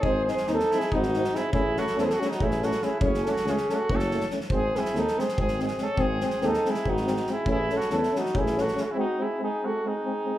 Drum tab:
SD |--oooooo-oooo-|--oooooo-oooo-|-oooooo--ooooo|--oooooo-oooo-|
BD |o-------o-----|o-------o-----|o-------o-----|o-------o-----|

SD |--oooooo-oooo-|--oooooo-oooo-|--------------|
BD |o-------o-----|o-------o-----|--------------|